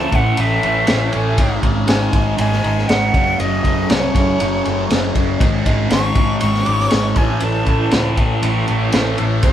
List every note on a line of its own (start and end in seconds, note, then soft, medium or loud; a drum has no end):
0.00 0.36 A2 medium
0.00 0.14 E3 medium
0.00 0.11 A3 medium
0.00 1.36 A3 medium
0.00 3.10 C#4 medium
0.00 1.36 E4 medium
0.00 3.11 C#5 medium
0.00 1.36 E5 medium
0.00 0.17 A5 loud
0.12 0.32 A1 medium
0.12 0.38 E3 medium
0.12 0.39 A3 medium
0.12 0.42 F#5 medium
0.12 kick medium
0.12 ride medium
0.37 0.58 A1 medium
0.37 0.86 A2 medium
0.37 0.65 E3 medium
0.37 0.61 A3 medium
0.37 1.14 E5 medium
0.37 ride medium
0.63 0.83 A1 medium
0.63 0.88 E3 soft
0.63 0.90 A3 medium
0.63 ride medium
0.87 1.09 A1 medium
0.87 1.37 A2 medium
0.87 1.15 E3 medium
0.87 snare loud
0.87 ride medium
0.91 1.11 A3 medium
1.13 1.34 A1 medium
1.13 1.38 E3 medium
1.13 1.37 A3 medium
1.13 1.59 G#5 medium
1.13 ride medium
1.37 1.58 G#1 medium
1.37 1.86 G#2 medium
1.37 1.65 D#3 medium
1.37 3.12 G#3 medium
1.37 1.62 G#3 medium
1.37 3.13 D#4 medium
1.37 3.12 D#5 medium
1.37 kick medium
1.37 ride medium
1.62 1.83 G#1 medium
1.62 1.89 D#3 medium
1.62 1.91 G#3 medium
1.62 kick medium
1.62 ride medium
1.88 2.08 G#1 medium
1.88 2.36 G#2 medium
1.88 2.15 D#3 medium
1.88 2.12 G#3 medium
1.88 2.36 G#5 medium
1.88 snare loud
1.88 ride medium
2.13 2.33 G#1 medium
2.13 2.39 D#3 medium
2.13 2.41 G#3 medium
2.13 kick medium
2.13 ride medium
2.38 2.59 G#1 medium
2.38 2.88 G#2 medium
2.38 2.66 D#3 medium
2.38 2.63 G#3 medium
2.38 2.90 G#5 medium
2.38 ride medium
2.52 snare soft
2.64 2.84 G#1 medium
2.64 2.90 D#3 medium
2.64 2.93 G#3 medium
2.64 ride soft
2.78 snare soft
2.88 3.09 G#1 medium
2.88 3.13 G#2 medium
2.88 3.14 D#3 medium
2.88 3.41 F#5 medium
2.88 snare loud
2.88 ride medium
2.93 3.14 G#3 medium
3.14 3.34 F#1 medium
3.14 3.39 F#2 medium
3.14 3.41 C#3 medium
3.14 3.42 F#3 medium
3.14 5.40 A3 medium
3.14 9.41 C#4 medium
3.14 5.40 F#4 medium
3.14 5.39 G#4 medium
3.14 kick medium
3.14 ride soft
3.40 3.59 F#1 medium
3.40 3.88 F#2 medium
3.40 3.67 C#3 medium
3.40 3.64 F#3 medium
3.40 3.93 D#5 medium
3.40 ride medium
3.64 3.84 F#1 medium
3.64 3.91 F#3 medium
3.64 kick medium
3.64 ride medium
3.69 3.90 C#3 medium
3.89 4.10 C2 medium
3.89 4.38 F#2 medium
3.89 4.17 C#3 medium
3.89 4.14 F#3 medium
3.89 5.17 C#5 medium
3.89 snare loud
3.89 ride medium
4.15 4.35 F#1 medium
4.15 4.40 C#3 medium
4.15 4.41 F#3 medium
4.15 kick medium
4.15 ride medium
4.39 4.60 F#1 medium
4.39 4.89 F#2 medium
4.39 4.68 C#3 medium
4.39 4.65 F#3 medium
4.39 ride medium
4.65 4.85 F#1 medium
4.65 4.91 C#3 medium
4.65 4.93 F#3 medium
4.65 ride medium
4.90 5.10 F#1 medium
4.90 5.39 F#2 medium
4.90 5.18 C#3 medium
4.90 5.14 F#3 medium
4.90 snare medium
4.90 ride medium
5.15 5.35 F#1 medium
5.15 5.41 C#3 medium
5.15 5.39 F#3 medium
5.15 kick medium
5.15 ride medium
5.39 5.60 G#1 medium
5.39 5.89 G#2 medium
5.39 5.68 D#3 medium
5.39 7.16 G#3 medium
5.39 5.65 G#3 medium
5.39 7.16 D#4 medium
5.39 9.53 C#5 medium
5.39 7.16 D#5 loud
5.39 kick loud
5.39 ride medium
5.66 5.85 G#1 medium
5.66 5.92 G#3 medium
5.66 kick medium
5.66 ride medium
5.70 5.91 D#3 medium
5.90 6.11 G#1 medium
5.90 6.40 G#2 medium
5.90 6.18 D#3 medium
5.90 6.14 G#3 medium
5.90 6.39 C#6 medium
5.90 snare loud
5.90 ride medium
6.15 6.35 G#1 medium
6.15 6.42 D#3 medium
6.15 6.43 G#3 medium
6.15 kick medium
6.15 ride medium
6.41 6.62 G#1 medium
6.41 6.90 G#2 medium
6.41 6.68 D#3 medium
6.41 6.64 G#3 medium
6.41 7.19 C#6 loud
6.41 ride medium
6.54 snare soft
6.66 6.87 G#1 medium
6.66 6.91 D#3 medium
6.66 6.93 G#3 medium
6.66 ride medium
6.80 snare soft
6.90 7.12 G#1 medium
6.90 7.15 G#2 medium
6.90 7.16 D#3 medium
6.90 7.17 G#3 medium
6.90 snare loud
6.90 ride medium
7.16 7.36 A1 medium
7.16 7.40 A2 medium
7.16 7.42 E3 medium
7.16 7.43 A3 medium
7.16 9.42 A3 medium
7.16 9.42 E4 medium
7.16 9.42 E5 medium
7.16 7.45 G#5 medium
7.16 kick medium
7.16 ride medium
7.40 7.62 A1 medium
7.40 7.90 A2 medium
7.40 7.68 E3 medium
7.40 7.65 A3 medium
7.40 7.93 A5 medium
7.40 ride medium
7.66 7.87 A1 medium
7.66 7.92 E3 medium
7.66 7.93 A3 medium
7.66 kick medium
7.66 ride soft
7.91 8.13 C#2 medium
7.91 8.41 A2 medium
7.91 8.19 E3 medium
7.91 8.16 A3 medium
7.91 snare loud
7.91 ride medium
8.17 8.37 A1 medium
8.17 8.43 E3 soft
8.17 8.45 A3 medium
8.17 kick medium
8.17 ride medium
8.43 8.63 A1 medium
8.43 8.93 A2 medium
8.43 8.71 E3 medium
8.43 8.66 A3 medium
8.43 ride medium
8.68 8.89 A1 medium
8.68 8.96 A3 medium
8.68 ride medium
8.72 8.94 E3 medium
8.92 9.14 A1 medium
8.92 9.43 A2 medium
8.92 9.21 E3 medium
8.92 snare loud
8.92 ride medium
8.97 9.17 A3 medium
9.18 9.39 A1 medium
9.18 9.42 A3 medium
9.18 ride medium
9.22 9.44 E3 medium
9.43 9.53 G#1 medium
9.43 9.53 G#2 medium
9.43 9.53 D#3 medium
9.43 9.53 G#3 medium
9.43 9.53 C#4 medium
9.43 9.53 D#4 medium
9.43 9.53 C#5 medium
9.43 9.53 D#5 medium
9.43 kick loud
9.43 ride medium
9.47 9.53 G#3 medium